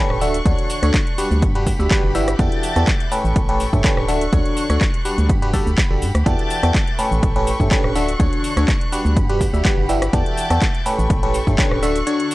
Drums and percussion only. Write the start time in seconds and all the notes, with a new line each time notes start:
0.10 cross-stick
0.21 open hi-hat, shaker
0.34 closed hi-hat, shaker
0.46 kick, closed hi-hat, shaker
0.58 closed hi-hat
0.70 open hi-hat, shaker
0.83 cross-stick, closed hi-hat, shaker
0.94 kick, clap, closed hi-hat, shaker
1.07 closed hi-hat
1.18 open hi-hat, shaker
1.31 shaker
1.42 kick, closed hi-hat, shaker
1.55 closed hi-hat
1.66 kick, open hi-hat, shaker
1.80 shaker
1.91 kick, clap, closed hi-hat, shaker
2.15 open hi-hat, shaker
2.28 cross-stick, closed hi-hat, shaker
2.39 kick, closed hi-hat, shaker
2.52 closed hi-hat
2.63 open hi-hat, shaker
2.76 cross-stick, closed hi-hat, shaker
2.87 kick, clap, closed hi-hat, shaker
3.00 closed hi-hat
3.12 open hi-hat, shaker
3.25 shaker
3.36 kick, closed hi-hat, shaker
3.49 closed hi-hat
3.60 open hi-hat, shaker
3.73 kick, shaker
3.84 kick, clap, closed hi-hat, shaker
3.97 cross-stick
4.08 open hi-hat, shaker
4.21 closed hi-hat, shaker
4.33 kick, closed hi-hat, shaker
4.45 closed hi-hat
4.57 open hi-hat, shaker
4.70 cross-stick, closed hi-hat, shaker
4.81 kick, clap, closed hi-hat, shaker
4.94 closed hi-hat
5.05 open hi-hat, shaker
5.18 closed hi-hat, shaker
5.29 kick, closed hi-hat, shaker
5.42 closed hi-hat
5.53 kick, open hi-hat, shaker
5.67 shaker
5.78 kick, clap, closed hi-hat, shaker
6.02 open hi-hat, shaker
6.15 cross-stick, closed hi-hat, shaker
6.26 kick, closed hi-hat, shaker
6.39 closed hi-hat
6.50 open hi-hat, shaker
6.63 cross-stick, closed hi-hat, shaker
6.75 kick, clap, closed hi-hat, shaker
6.87 closed hi-hat
6.99 open hi-hat, shaker
7.12 shaker
7.23 kick, closed hi-hat, shaker
7.36 closed hi-hat
7.47 open hi-hat, shaker
7.60 kick, shaker
7.71 kick, clap, closed hi-hat, shaker
7.84 cross-stick
7.96 open hi-hat, shaker
8.08 closed hi-hat, shaker
8.20 kick, closed hi-hat, shaker
8.33 closed hi-hat
8.44 open hi-hat, shaker
8.57 cross-stick, closed hi-hat, shaker
8.68 kick, clap, closed hi-hat, shaker
8.81 closed hi-hat
8.92 open hi-hat, shaker
9.06 shaker
9.16 kick, closed hi-hat, shaker
9.29 closed hi-hat
9.41 kick, open hi-hat, shaker
9.54 shaker
9.65 kick, clap, closed hi-hat, shaker
9.89 open hi-hat, shaker
10.02 cross-stick, closed hi-hat, shaker
10.13 kick, closed hi-hat, shaker
10.26 closed hi-hat
10.37 open hi-hat, shaker
10.50 cross-stick, closed hi-hat, shaker
10.62 kick, clap, closed hi-hat, shaker
10.75 closed hi-hat
10.86 open hi-hat, shaker
10.99 shaker
11.10 kick, closed hi-hat, shaker
11.23 closed hi-hat
11.34 open hi-hat, shaker
11.47 kick, shaker
11.58 kick, clap, closed hi-hat, shaker
11.71 cross-stick
11.83 open hi-hat, shaker
11.96 closed hi-hat, shaker
12.07 closed hi-hat, shaker
12.20 closed hi-hat
12.31 open hi-hat, shaker